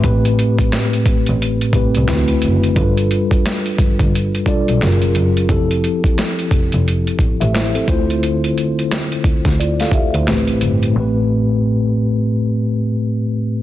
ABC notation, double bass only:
X:1
M:4/4
L:1/16
Q:"Swing 16ths" 1/4=88
K:Am
V:1 name="Double bass" clef=bass
A,,,2 z4 A,,, A,,, z2 C,, C,, D,,2 ^F,,,2 | G,,,2 z4 G,,, G,,, z2 B,,, B,,, ^F,,,2 F,,,2 | F,,,2 z4 F,,, F,,, z2 A,,, A,,, z2 D,,2- | D,,2 z4 D,, D,, z2 D,, D,, A,,,2 G,,,2 |
A,,,16 |]